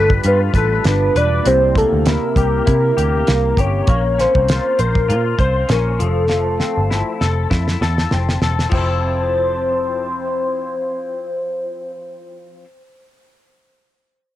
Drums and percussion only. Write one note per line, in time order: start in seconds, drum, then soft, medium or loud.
0.10 kick medium
0.24 closed hi-hat medium
0.54 kick medium
0.54 closed hi-hat medium
0.84 snare medium
0.84 closed hi-hat medium
1.16 closed hi-hat medium
1.46 closed hi-hat medium
1.75 kick medium
1.75 closed hi-hat medium
2.06 snare loud
2.06 closed hi-hat medium
2.36 kick medium
2.36 closed hi-hat medium
2.67 kick medium
2.67 closed hi-hat medium
2.98 closed hi-hat medium
3.27 snare medium
3.27 closed hi-hat medium
3.57 kick medium
3.57 closed hi-hat medium
3.87 kick loud
3.87 closed hi-hat medium
4.19 snare soft
4.19 closed hi-hat medium
4.35 kick medium
4.48 snare loud
4.48 closed hi-hat medium
4.79 closed hi-hat medium
4.95 kick medium
5.10 closed hi-hat medium
5.39 kick medium
5.39 closed hi-hat medium
5.69 snare medium
5.69 closed hi-hat medium
6.00 closed hi-hat medium
6.30 snare soft
6.60 snare medium
6.91 snare medium
7.21 snare medium
7.51 kick medium
7.51 snare medium
7.68 snare medium
7.82 snare medium
7.98 snare medium
8.11 snare medium
8.29 snare medium
8.42 snare medium
8.59 snare medium
8.71 kick medium
8.71 splash medium